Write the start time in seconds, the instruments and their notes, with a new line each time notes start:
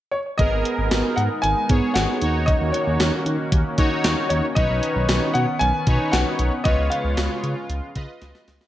0.12 grand piano C#5
0.38 analog synth bass G#1, analog synth pad G#3 B3 D#4 A#4, analog polysynth B3 G#4 A#4, grand piano D#5, kick, closed hi-hat
0.52 analog synth bass G#1
0.65 closed hi-hat
0.78 analog synth bass G#1
0.91 analog synth bass G#1, snare, closed hi-hat
1.16 analog synth bass G#2, grand piano F#5, closed hi-hat
1.42 analog synth bass G#1, grand piano G#5, closed hi-hat
1.69 analog synth bass G#2, analog polysynth B3 G#4 C#5, kick, closed hi-hat
1.94 analog synth bass G#1, grand piano F#5, snare, closed hi-hat
2.22 analog synth bass D#2, analog synth pad D#3 A#3 C#4 F#4, analog polysynth D#4 F#4 C#5, closed hi-hat
2.46 grand piano D#5, kick, closed hi-hat
2.61 analog synth bass D#2
2.72 grand piano C#5, closed hi-hat
2.87 analog synth bass D#2
3.00 analog synth bass D#2, snare, closed hi-hat
3.26 analog synth bass D#3, closed hi-hat
3.52 analog synth bass D#2, kick, closed hi-hat
3.78 analog synth bass D#3, analog polysynth D#4 F#4 C#5, kick, closed hi-hat
4.04 analog synth bass D#2, snare, closed hi-hat
4.29 analog synth bass D#2, grand piano C#5, closed hi-hat
4.55 analog synth bass B1, analog synth pad B3, analog polysynth D#4 B4 C#5, grand piano D#5, kick, closed hi-hat
4.70 analog synth bass B1
4.83 closed hi-hat
4.96 analog synth bass B1
5.09 analog synth bass B1, snare, closed hi-hat
5.34 analog synth bass B2, grand piano F#5, closed hi-hat
5.59 analog synth bass B1, grand piano G#5, closed hi-hat
5.87 analog synth bass B2, analog polysynth D#4 B4 C#5, kick, closed hi-hat
6.11 analog synth bass B1, grand piano F#5, snare, closed hi-hat
6.39 analog synth bass B1, closed hi-hat
6.64 analog synth bass C#2, analog synth pad C#3 G#3 F4, analog polysynth F4 B4 C#5, grand piano D#5, kick, closed hi-hat
6.78 analog synth bass C#2
6.90 grand piano F5, closed hi-hat
7.04 analog synth bass C#2
7.17 analog synth bass C#2, snare, closed hi-hat
7.43 analog synth bass C#3, closed hi-hat
7.70 analog synth bass C#2, closed hi-hat
7.95 analog synth bass C#3, analog polysynth F4 B4 D#5, kick, closed hi-hat
8.22 analog synth bass C#2, snare, closed hi-hat
8.35 snare
8.48 analog synth bass C#2, snare, open hi-hat
8.61 snare